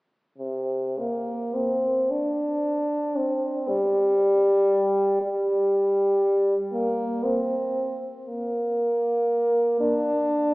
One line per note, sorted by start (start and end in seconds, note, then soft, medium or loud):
0.38 1.00 C3 soft
0.99 1.56 A#3 soft
1.54 2.12 C4 soft
2.11 3.18 D4 soft
3.17 3.70 C4 soft
3.68 5.21 G3 medium
5.22 6.56 G3 medium
6.73 7.26 A#3 soft
7.25 8.00 C4 soft
8.27 9.77 A#3 soft
9.81 10.54 D4 medium